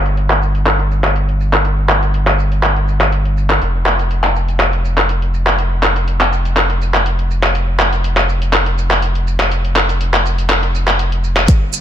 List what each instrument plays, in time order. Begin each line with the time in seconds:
Already playing: sub bass G1
0.06 closed hi-hat, shaker
0.17 closed hi-hat, shaker
0.30 clap
0.42 shaker
0.55 closed hi-hat, shaker
0.66 clap, closed hi-hat, shaker
0.80 closed hi-hat
0.92 shaker
1.04 clap, closed hi-hat, shaker
1.16 closed hi-hat, shaker
1.29 closed hi-hat
1.41 shaker
1.53 clap, closed hi-hat, shaker
1.65 closed hi-hat, shaker
1.89 clap, shaker
2.03 closed hi-hat, shaker
2.14 closed hi-hat, shaker
2.27 clap, closed hi-hat
2.39 shaker
2.52 closed hi-hat, shaker
2.63 clap, closed hi-hat, shaker
2.76 closed hi-hat
2.88 shaker
3.01 clap, closed hi-hat, shaker
3.12 closed hi-hat, shaker
3.25 closed hi-hat
3.37 shaker
3.50 clap, closed hi-hat, shaker
3.62 sub bass F1, closed hi-hat, shaker
3.86 clap, shaker
3.99 closed hi-hat, shaker
4.11 closed hi-hat, shaker
4.24 clap
4.36 shaker
4.48 closed hi-hat, shaker
4.60 clap, closed hi-hat, shaker
4.73 closed hi-hat
4.85 shaker
4.98 clap, closed hi-hat, shaker
5.09 closed hi-hat, shaker
5.22 closed hi-hat
5.34 shaker
5.47 clap, closed hi-hat, shaker
5.59 closed hi-hat, shaker
5.83 clap, shaker
5.96 closed hi-hat, shaker
6.08 closed hi-hat, shaker
6.21 clap
6.33 shaker
6.45 closed hi-hat, shaker
6.57 clap, closed hi-hat, shaker
6.70 closed hi-hat
6.82 shaker
6.94 clap, closed hi-hat, shaker
7.06 closed hi-hat, shaker
7.19 closed hi-hat
7.31 shaker
7.43 clap, closed hi-hat, shaker
7.55 closed hi-hat, shaker
7.80 clap, shaker
7.93 closed hi-hat, shaker
8.04 closed hi-hat, shaker
8.17 clap
8.29 shaker
8.42 closed hi-hat, shaker
8.53 clap, closed hi-hat, shaker
8.66 closed hi-hat
8.78 shaker
8.91 clap, closed hi-hat, shaker
9.02 closed hi-hat, shaker
9.15 closed hi-hat
9.27 shaker
9.40 clap, closed hi-hat, shaker
9.52 closed hi-hat, shaker
9.65 closed hi-hat
9.76 clap, shaker
9.89 closed hi-hat, shaker
10.01 closed hi-hat, shaker
10.14 clap, closed hi-hat
10.26 shaker
10.38 closed hi-hat, shaker
10.50 clap, closed hi-hat, shaker
10.63 closed hi-hat
10.75 shaker
10.88 clap, closed hi-hat, shaker
10.99 closed hi-hat, shaker
11.12 closed hi-hat
11.24 shaker
11.37 clap, closed hi-hat, shaker
11.48 sub bass G1, kick, closed hi-hat, mid tom, shaker
11.73 shaker